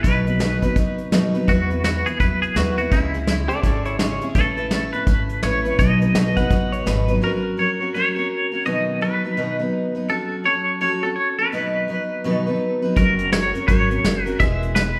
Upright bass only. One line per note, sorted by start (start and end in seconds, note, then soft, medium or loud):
0.04 0.58 B1 medium
0.76 1.30 F#2 medium
1.48 2.02 E2 medium
2.20 2.50 E2 medium
2.56 2.86 D#2 medium
2.92 3.45 C#2 medium
3.64 4.17 G#1 medium
4.35 4.89 A1 loud
5.07 5.37 G#1 medium
5.43 5.73 A1 medium
5.79 6.06 B1 medium
6.15 6.45 B1 medium
6.51 6.81 A1 medium
6.87 7.17 G#1 medium
12.97 13.50 F#1 medium
13.68 13.99 G#1 medium
14.04 14.35 F#1 medium
14.40 14.94 E1 medium